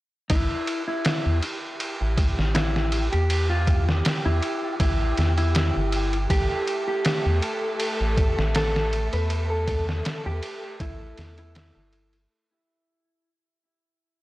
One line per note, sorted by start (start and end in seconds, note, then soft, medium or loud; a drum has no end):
0.30 0.48 A1 medium
0.30 0.82 E4 medium
0.30 12.32 G4 medium
0.30 kick loud
0.30 ride medium
0.67 ride medium
0.88 1.37 E4 medium
1.05 snare loud
1.05 ride medium
1.26 1.41 E2 medium
1.42 ride medium
1.80 ride medium
2.01 2.33 A1 medium
2.18 kick medium
2.18 ride medium
2.39 3.09 A1 medium
2.39 snare soft
2.55 3.06 E4 medium
2.55 snare loud
2.55 ride medium
2.76 snare soft
2.92 ride medium
3.12 4.02 E2 medium
3.12 3.46 G4 medium
3.12 ride soft
3.30 ride medium
3.49 3.83 F4 medium
3.67 kick medium
3.67 ride medium
3.89 snare medium
4.05 snare loud
4.05 ride medium
4.26 4.41 E2 medium
4.26 4.75 E4 medium
4.42 ride medium
4.80 5.13 A1 medium
4.80 5.32 E4 medium
4.80 kick medium
4.80 ride medium
5.17 5.72 E2 loud
5.17 snare soft
5.17 ride medium
5.38 6.16 E4 medium
5.38 ride soft
5.55 snare loud
5.55 ride medium
5.76 6.27 G1 medium
5.92 ride medium
6.13 ride soft
6.30 6.48 A1 medium
6.30 12.32 A3 medium
6.30 6.82 G4 medium
6.30 12.32 A4 medium
6.30 kick loud
6.30 ride medium
6.67 ride medium
6.88 7.37 G4 medium
7.05 snare loud
7.05 ride medium
7.26 7.41 E2 medium
7.42 ride medium
7.80 ride medium
8.01 8.33 A1 medium
8.17 kick medium
8.17 ride medium
8.39 9.09 A1 medium
8.39 snare soft
8.55 9.07 A4 medium
8.55 snare loud
8.55 ride medium
8.76 snare medium
8.93 ride medium
9.13 10.02 E2 medium
9.13 9.46 B4 medium
9.13 ride soft
9.30 ride medium
9.50 9.84 A4 medium
9.68 kick medium
9.68 ride medium
9.89 snare soft
10.05 snare loud
10.05 ride medium
10.26 10.41 E2 medium
10.26 10.75 G4 medium
10.43 ride medium
10.80 11.14 A1 medium
10.80 11.32 E4 medium
10.80 kick loud
10.80 ride medium
11.18 11.72 E2 loud
11.18 snare soft
11.18 ride medium
11.38 12.17 E4 medium
11.38 ride soft
11.55 snare loud
11.55 ride medium
11.76 12.27 G1 medium
11.93 ride medium
12.13 ride soft